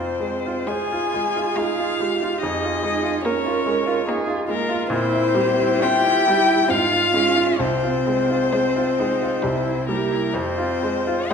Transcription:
Already playing: grand piano F2 F4, cello C4, violin C5
0.20 grand piano G#3
0.46 grand piano F4
0.67 violin G#3 G#5, viola F4, cello G#4, grand piano C5
0.92 grand piano F4
1.14 grand piano G#3
1.37 grand piano F4
1.56 violin G#3 F5, grand piano D#4, cello F4, viola G#4
1.79 grand piano F4
2.00 grand piano G#3, viola G4
2.22 grand piano F4
2.42 grand piano F2, cello D#4, viola G#4, violin D#5
2.64 grand piano F4
2.83 grand piano G#3
3.03 grand piano F4
3.24 violin A#3 C#5, cello C#4, viola A#4, grand piano A#4
3.46 grand piano F4
3.66 grand piano G#3
3.87 grand piano F4
4.07 violin A#3, grand piano D#4, viola G#4
4.28 grand piano F4
4.48 grand piano G#3, cello A#3, viola F4, violin A#4
4.69 grand piano F4
4.90 grand piano A#2, cello C4, viola E4, violin C5
5.12 grand piano E4
5.35 grand piano G3, viola G4
5.60 grand piano E4
5.82 violin C4 G5, viola F4, cello G4, grand piano C5
6.06 grand piano E4
6.27 grand piano G3, viola E4
6.49 grand piano E4
6.69 grand piano G#2, violin C4 F5, cello F4, viola F4
6.91 grand piano F4
7.13 grand piano G#3, viola C#4
7.36 grand piano F4
7.58 grand piano C2, cello C4, viola C4, violin C5
7.83 grand piano F4
8.07 grand piano G#3
8.30 grand piano F4
8.53 violin G#3, viola C4, grand piano C5
8.76 grand piano F4
8.99 grand piano G#3, viola D#4
9.22 grand piano F4
9.43 grand piano C2, violin G3, viola E4
9.67 grand piano E4
9.87 grand piano G3, cello A#3, viola G4, violin A#4
10.11 grand piano E4
10.34 grand piano F2, cello C4, violin C5
10.58 grand piano F4
10.83 grand piano G#3
11.07 grand piano F4
11.31 grand piano C5

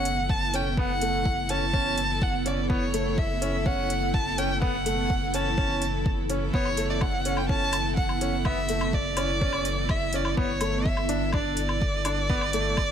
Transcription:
Already playing: sub bass F#1, ambient pad B3 E4 A4, violin F#5
0.05 closed hi-hat
0.29 violin A5, kick
0.54 grand piano C#4, violin G5, closed hi-hat
0.72 violin G5
0.77 grand piano B3, violin F#5, kick
1.01 grand piano A3, closed hi-hat
1.25 kick
1.49 grand piano C#4, violin A5, closed hi-hat
1.73 grand piano C#4, kick
1.98 closed hi-hat
2.22 violin F#5, kick
2.46 grand piano C#4, violin D5, closed hi-hat
2.70 grand piano B3, violin C#5, kick
2.94 grand piano A3, closed hi-hat
3.18 violin E5, kick
3.42 grand piano C#4, closed hi-hat
3.66 grand piano C#4, violin F#5, kick
3.90 closed hi-hat
4.14 violin A5, kick
4.38 grand piano C#4, violin G5, closed hi-hat
4.62 grand piano B3, violin F#5, kick
4.86 grand piano A3, closed hi-hat
5.10 kick
5.34 grand piano C#4, violin A5, closed hi-hat
5.58 grand piano C#4, kick
5.82 closed hi-hat
6.06 kick
6.30 grand piano C#4, closed hi-hat
6.54 sub bass F#1, grand piano B3, violin C#5, kick
6.65 low woodblock
6.77 grand piano A3, closed hi-hat
6.90 violin D5
7.01 violin F#5, kick, low woodblock
7.25 grand piano C#4, closed hi-hat
7.37 violin G5, low woodblock
7.49 grand piano C#4, violin A5, kick
7.73 closed hi-hat, low woodblock
7.96 violin F#5, kick
8.09 low woodblock
8.21 grand piano C#4, closed hi-hat
8.45 grand piano B3, violin E5, kick, low woodblock
8.69 grand piano A3, closed hi-hat
8.81 low woodblock
8.93 violin D5, kick
9.17 grand piano C#4, closed hi-hat, low woodblock
9.41 grand piano C#4, kick
9.53 low woodblock
9.65 closed hi-hat
9.89 violin E5, kick, low woodblock
10.13 grand piano C#4, violin D5, closed hi-hat
10.25 low woodblock
10.37 sub bass G1, grand piano B3, violin C#5, kick
10.61 grand piano A3, closed hi-hat, low woodblock
10.86 violin E5, kick
10.97 low woodblock
11.09 grand piano D4, closed hi-hat
11.32 grand piano D4, violin D5, kick, low woodblock
11.57 closed hi-hat
11.69 low woodblock
11.82 kick
12.05 grand piano D4, closed hi-hat, low woodblock
12.29 grand piano B3, kick
12.41 low woodblock
12.53 grand piano A3, closed hi-hat
12.77 kick, low woodblock

